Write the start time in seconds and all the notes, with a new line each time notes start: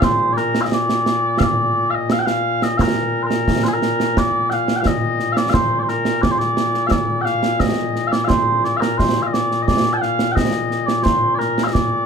Already playing: A#2
0.02 C5, concert bass drum, snare
0.33 D5
0.37 A#4, snare
0.55 snare
0.61 D#5 F5
0.72 D5, snare
0.89 snare
1.06 snare
1.38 F5, concert bass drum, snare
1.42 D5
1.90 F5
1.94 D#5
2.10 F5, snare
2.19 G5
2.26 F5, snare
2.62 D#5, snare
2.78 A#4 F5, concert bass drum, snare
3.23 A#4 C5
3.31 snare
3.48 concert bass drum, snare
3.64 C5, snare
3.68 G#4
3.74 A#4
3.82 snare
4.00 snare
4.17 D5, concert bass drum, snare
4.50 F5 G5, snare
4.68 snare
4.76 G5
4.81 F5
4.85 D#5, concert bass drum, snare
5.20 snare
5.32 F5
5.37 D5, snare
5.49 C5 F5
5.54 concert bass drum, snare
5.79 C5 D5
5.89 A#4, snare
6.05 snare
6.22 D5, concert bass drum, snare
6.31 C5
6.38 D5, snare
6.57 snare
6.74 snare
6.87 F5
6.91 D5, concert bass drum, snare
7.21 F5 G5
7.26 snare
7.43 snare
7.60 D#5, concert bass drum, snare
7.96 snare
8.07 F5
8.12 D5, snare
8.24 C5 F5
8.30 concert bass drum, snare
8.64 D5, snare
8.77 A#4 F5
8.82 snare
8.98 C5, concert bass drum, snare
9.17 snare
9.22 F5
9.27 D#5
9.33 D5, snare
9.52 snare
9.62 D#5
9.67 D5, concert bass drum, snare
9.93 G5 A5
10.02 F5, snare
10.19 snare
10.32 D#5 G5
10.37 concert bass drum, snare
10.71 snare
10.86 D5, snare
11.03 C5, concert bass drum, snare
11.35 D5
11.39 A#4, snare
11.58 snare
11.64 D#5 F5
11.73 D5, concert bass drum, snare